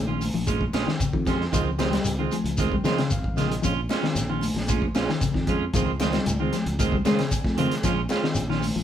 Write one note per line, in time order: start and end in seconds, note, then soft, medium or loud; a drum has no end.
0.00 0.28 A#1 medium
0.08 0.29 D#3 medium
0.08 0.25 C#4 soft
0.08 0.24 F4 soft
0.21 open hi-hat medium
0.21 high conga medium
0.21 shekere soft
0.33 0.67 A#1 medium
0.33 0.56 F3 medium
0.33 low conga medium
0.47 0.63 G#3 medium
0.47 0.64 C#4 medium
0.47 0.64 F4 medium
0.47 kick medium
0.47 closed hi-hat medium
0.47 high conga medium
0.47 shekere medium
0.61 kick medium
0.73 0.85 A#1 medium
0.73 0.90 G#3 medium
0.73 0.90 C4 medium
0.73 0.90 C#4 medium
0.73 0.90 F4 medium
0.73 0.90 G#4 medium
0.73 snare medium
0.73 closed hi-hat soft
0.73 high conga medium
0.73 shekere soft
0.87 0.98 D#3 medium
0.87 snare medium
1.00 1.11 C#3 medium
1.00 muted fingered electric bass stroke soft
1.00 kick medium
1.00 closed hi-hat medium
1.00 shekere medium
1.13 1.47 F2 medium
1.13 1.35 D#3 medium
1.13 kick medium
1.25 1.35 G#3 medium
1.25 1.43 G#3 medium
1.25 1.35 C4 medium
1.25 1.35 C#4 medium
1.25 1.43 C#4 medium
1.25 1.44 F4 medium
1.25 1.35 G4 medium
1.25 kick medium
1.25 snare soft
1.25 closed hi-hat medium
1.25 low conga medium
1.25 shekere soft
1.41 snare soft
1.52 1.97 C#2 medium
1.52 1.69 D#3 medium
1.52 1.69 G#3 medium
1.52 1.61 G#3 medium
1.52 1.69 C4 medium
1.52 1.61 C4 medium
1.52 1.61 D#4 medium
1.52 1.61 F4 loud
1.52 1.69 F4 medium
1.52 muted clean electric guitar stroke medium
1.52 kick medium
1.52 closed hi-hat medium
1.52 low conga medium
1.52 shekere medium
1.78 1.95 D#3 medium
1.78 1.90 F3 medium
1.78 1.95 G#3 medium
1.78 2.11 G#3 medium
1.78 2.11 C4 medium
1.78 1.95 C4 medium
1.78 2.11 D#4 medium
1.78 1.96 F4 medium
1.78 2.11 G4 loud
1.78 snare medium
1.78 closed hi-hat medium
1.78 high conga medium
1.78 shekere soft
1.92 2.13 G3 medium
1.92 snare medium
1.92 closed hi-hat medium
2.05 2.27 C#2 loud
2.05 closed hi-hat medium
2.05 shekere medium
2.19 2.30 D#3 medium
2.19 2.35 G#3 soft
2.19 2.35 C4 soft
2.19 2.35 F4 soft
2.31 2.54 F3 medium
2.31 2.57 G#5 medium
2.31 closed hi-hat soft
2.31 high conga medium
2.31 shekere soft
2.44 2.78 C#2 medium
2.44 closed hi-hat soft
2.44 low conga medium
2.57 2.74 D#3 medium
2.57 2.75 G#3 medium
2.57 2.75 C4 medium
2.57 2.75 F4 medium
2.57 2.83 G5 medium
2.57 kick medium
2.57 closed hi-hat medium
2.57 high conga medium
2.57 shekere medium
2.72 2.82 G3 medium
2.72 kick medium
2.84 3.06 C#3 medium
2.84 3.00 D#3 medium
2.84 2.96 F3 medium
2.84 3.01 G#3 medium
2.84 3.01 C4 medium
2.84 3.01 D#4 medium
2.84 3.01 F4 medium
2.84 3.09 F5 medium
2.84 snare medium
2.84 closed hi-hat soft
2.84 high conga medium
2.84 shekere soft
2.98 3.20 C#3 medium
2.98 snare medium
2.98 closed hi-hat medium
3.10 3.35 G#1 medium
3.10 3.36 F5 medium
3.10 kick medium
3.10 closed hi-hat medium
3.10 shekere medium
3.24 kick medium
3.36 3.60 A#1 medium
3.36 3.58 C#3 medium
3.36 3.53 D#3 medium
3.36 3.45 G#3 medium
3.36 3.53 G#3 medium
3.36 3.45 C4 medium
3.36 3.45 D#4 medium
3.36 3.45 F4 medium
3.36 3.54 F4 medium
3.36 3.62 D#5 medium
3.36 snare soft
3.36 closed hi-hat soft
3.36 low conga medium
3.36 shekere soft
3.51 closed hi-hat soft
3.62 3.86 A#1 medium
3.62 3.84 F3 medium
3.62 3.72 G#3 medium
3.62 3.72 C4 medium
3.62 3.80 C#4 medium
3.62 3.72 C#4 medium
3.62 3.80 F4 medium
3.62 3.72 F4 medium
3.62 muted clean electric guitar stroke medium
3.62 kick medium
3.62 closed hi-hat medium
3.62 low conga medium
3.62 shekere medium
3.89 4.21 G#3 medium
3.89 4.06 G#3 medium
3.89 4.22 C4 medium
3.89 4.22 C#4 medium
3.89 4.06 C#4 medium
3.89 4.22 F4 medium
3.89 4.07 F4 medium
3.89 snare medium
3.89 closed hi-hat soft
3.89 high conga medium
3.89 shekere soft
4.03 4.24 D#3 medium
4.03 snare medium
4.15 4.49 A#1 medium
4.15 snare soft
4.15 closed hi-hat medium
4.15 shekere medium
4.30 4.51 D#3 medium
4.30 4.46 C#4 soft
4.30 4.45 F4 medium
4.41 open hi-hat medium
4.41 high conga medium
4.41 shekere soft
4.54 4.88 A#1 medium
4.54 4.77 F3 medium
4.54 snare soft
4.54 low conga medium
4.68 4.84 G#3 medium
4.68 4.85 C#4 medium
4.68 4.85 F4 medium
4.68 kick medium
4.68 closed hi-hat medium
4.68 high conga medium
4.68 shekere medium
4.82 kick medium
4.95 5.06 A#1 medium
4.95 5.11 G#3 medium
4.95 5.11 C4 medium
4.95 5.11 C#4 medium
4.95 5.11 F4 medium
4.95 snare medium
4.95 closed hi-hat soft
4.95 high conga medium
4.95 shekere soft
5.09 5.19 D#3 medium
5.09 snare medium
5.21 5.32 C#3 medium
5.21 muted fingered electric bass stroke soft
5.21 kick medium
5.21 closed hi-hat medium
5.21 shekere medium
5.34 5.68 F2 medium
5.34 5.55 D#3 medium
5.34 kick medium
5.34 snare soft
5.47 5.64 G#3 medium
5.47 5.56 G#3 medium
5.47 5.56 C4 medium
5.47 5.64 C#4 medium
5.47 5.56 C#4 medium
5.47 5.64 F4 medium
5.47 5.56 F4 medium
5.47 kick medium
5.47 closed hi-hat medium
5.47 low conga medium
5.47 shekere soft
5.74 6.18 C#2 medium
5.74 5.90 D#3 medium
5.74 5.95 F3 medium
5.74 5.82 G#3 medium
5.74 5.90 G#3 medium
5.74 5.82 C4 medium
5.74 5.91 C4 medium
5.74 5.82 D#4 medium
5.74 5.82 F4 medium
5.74 5.91 F4 medium
5.74 kick medium
5.74 closed hi-hat medium
5.74 low conga medium
5.74 shekere medium
6.00 6.16 D#3 medium
6.00 6.11 F3 medium
6.00 6.32 G#3 medium
6.00 6.17 G#3 medium
6.00 6.31 C4 medium
6.00 6.17 C4 medium
6.00 6.32 D#4 medium
6.00 6.32 F4 medium
6.00 6.17 F4 medium
6.00 snare medium
6.00 closed hi-hat medium
6.00 high conga loud
6.00 shekere soft
6.13 6.35 G3 medium
6.13 snare medium
6.13 closed hi-hat medium
6.26 6.48 C#2 loud
6.26 closed hi-hat medium
6.26 high conga medium
6.26 shekere medium
6.40 6.50 D#3 medium
6.40 6.56 G#3 soft
6.40 6.56 C4 medium
6.40 6.56 F4 soft
6.53 6.74 F3 medium
6.53 snare soft
6.53 closed hi-hat soft
6.53 high conga medium
6.53 shekere soft
6.66 6.99 C#2 medium
6.66 closed hi-hat soft
6.66 low conga medium
6.79 6.95 D#3 medium
6.79 6.95 G#3 medium
6.79 6.95 C4 medium
6.79 6.95 F4 medium
6.79 kick medium
6.79 closed hi-hat medium
6.79 high conga medium
6.79 shekere medium
6.92 7.03 G3 medium
6.92 kick medium
7.05 7.27 C#3 medium
7.05 7.21 D#3 medium
7.05 7.21 G#3 medium
7.05 7.16 G#3 medium
7.05 7.21 G#3 medium
7.05 7.21 C4 medium
7.05 7.22 D#4 medium
7.05 7.21 F4 medium
7.05 7.22 F4 medium
7.05 snare medium
7.05 closed hi-hat medium
7.05 high conga medium
7.05 shekere soft
7.19 7.40 C#3 medium
7.19 snare medium
7.19 closed hi-hat soft
7.31 7.80 G#5 medium
7.31 kick medium
7.31 closed hi-hat medium
7.31 shekere medium
7.44 7.67 F2 medium
7.44 kick medium
7.44 snare soft
7.44 high conga medium
7.57 7.79 C#3 medium
7.57 7.73 D#3 medium
7.57 7.74 G#3 medium
7.57 7.66 G#3 medium
7.57 7.74 C4 medium
7.57 7.66 C4 medium
7.57 7.66 D#4 medium
7.57 7.74 F4 medium
7.57 7.66 F4 medium
7.57 closed hi-hat medium
7.57 high conga medium
7.57 low conga medium
7.57 shekere soft
7.71 snare soft
7.71 closed hi-hat medium
7.83 8.06 A#1 medium
7.83 8.06 F3 medium
7.83 7.92 G#3 medium
7.83 8.00 G#3 medium
7.83 7.91 C4 medium
7.83 7.92 C#4 medium
7.83 8.00 C#4 medium
7.83 7.92 F4 loud
7.83 8.00 F4 medium
7.83 kick loud
7.83 snare soft
7.83 closed hi-hat medium
7.83 low conga medium
7.83 shekere medium
8.09 8.41 G#3 medium
8.09 8.26 G#3 medium
8.09 8.42 C4 medium
8.09 8.42 C#4 medium
8.09 8.27 C#4 medium
8.09 8.42 F4 medium
8.09 8.27 F4 medium
8.09 snare medium
8.09 closed hi-hat soft
8.09 high conga medium
8.09 shekere soft
8.23 8.44 D#3 medium
8.23 snare medium
8.35 8.70 A#1 medium
8.35 closed hi-hat medium
8.35 shekere medium
8.49 8.71 D#3 medium
8.49 8.66 C#4 soft
8.49 8.65 F4 medium
8.49 snare soft
8.62 open hi-hat medium
8.62 high conga medium
8.62 shekere soft
8.76 8.83 A#1 medium
8.76 8.83 F3 medium